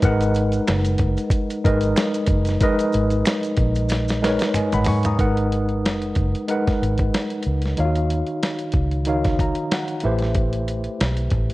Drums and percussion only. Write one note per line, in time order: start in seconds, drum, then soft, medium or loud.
0.02 kick loud
0.02 closed hi-hat medium
0.02 maracas medium
0.21 closed hi-hat medium
0.21 maracas soft
0.34 closed hi-hat medium
0.34 maracas soft
0.52 closed hi-hat soft
0.52 maracas soft
0.68 finger snap medium
0.68 snare loud
0.68 closed hi-hat medium
0.68 maracas medium
0.85 closed hi-hat medium
0.85 maracas soft
0.98 kick medium
0.98 closed hi-hat medium
1.17 closed hi-hat soft
1.17 maracas soft
1.30 kick loud
1.30 closed hi-hat medium
1.30 maracas medium
1.50 closed hi-hat soft
1.50 maracas soft
1.65 kick loud
1.65 closed hi-hat medium
1.81 closed hi-hat medium
1.81 maracas soft
1.96 finger snap medium
1.96 snare loud
1.96 closed hi-hat medium
1.96 maracas medium
2.14 closed hi-hat medium
2.14 maracas soft
2.26 kick medium
2.26 closed hi-hat medium
2.45 snare soft
2.45 closed hi-hat soft
2.45 maracas medium
2.60 kick loud
2.60 closed hi-hat medium
2.60 maracas medium
2.79 closed hi-hat medium
2.79 maracas soft
2.92 closed hi-hat medium
2.92 maracas soft
3.10 closed hi-hat soft
3.10 maracas soft
3.25 finger snap medium
3.25 snare loud
3.25 closed hi-hat medium
3.25 maracas medium
3.43 closed hi-hat soft
3.43 maracas soft
3.57 kick medium
3.57 closed hi-hat medium
3.75 closed hi-hat soft
3.75 maracas soft
3.89 snare medium
3.89 closed hi-hat medium
3.89 maracas medium
4.08 snare medium
4.08 closed hi-hat soft
4.08 maracas medium
4.24 snare medium
4.24 closed hi-hat medium
4.39 snare medium
4.39 closed hi-hat medium
4.39 maracas soft
4.54 finger snap medium
4.54 closed hi-hat medium
4.54 mid tom medium
4.54 maracas medium
4.73 closed hi-hat soft
4.73 mid tom medium
4.73 maracas soft
4.85 floor tom medium
4.85 open hi-hat medium
5.03 closed hi-hat soft
5.03 floor tom medium
5.03 maracas soft
5.19 kick loud
5.19 closed hi-hat medium
5.37 closed hi-hat soft
5.52 closed hi-hat medium
5.69 closed hi-hat soft
5.85 snare medium
5.85 closed hi-hat medium
6.02 closed hi-hat soft
6.15 kick medium
6.15 closed hi-hat medium
6.35 closed hi-hat soft
6.48 closed hi-hat medium
6.67 kick medium
6.67 snare soft
6.67 closed hi-hat soft
6.83 closed hi-hat medium
6.98 kick medium
6.98 closed hi-hat soft
7.14 snare medium
7.14 closed hi-hat medium
7.30 closed hi-hat soft
7.43 closed hi-hat medium
7.62 snare soft
7.62 closed hi-hat soft
7.77 closed hi-hat medium
7.95 closed hi-hat soft
8.10 closed hi-hat medium
8.26 closed hi-hat soft
8.42 snare medium
8.42 closed hi-hat medium
8.58 closed hi-hat soft
8.72 kick medium
8.72 closed hi-hat medium
8.91 closed hi-hat soft
9.05 closed hi-hat medium
9.24 kick medium
9.24 snare soft
9.24 closed hi-hat soft
9.39 kick medium
9.39 closed hi-hat medium
9.55 closed hi-hat soft
9.71 snare loud
9.71 closed hi-hat medium
9.87 closed hi-hat soft
10.00 closed hi-hat medium
10.18 snare soft
10.18 closed hi-hat soft
10.34 kick loud
10.34 closed hi-hat medium
10.53 closed hi-hat soft
10.68 closed hi-hat medium
10.84 closed hi-hat soft
11.00 snare medium
11.00 closed hi-hat medium
11.17 closed hi-hat soft
11.30 kick medium
11.30 closed hi-hat medium
11.50 closed hi-hat soft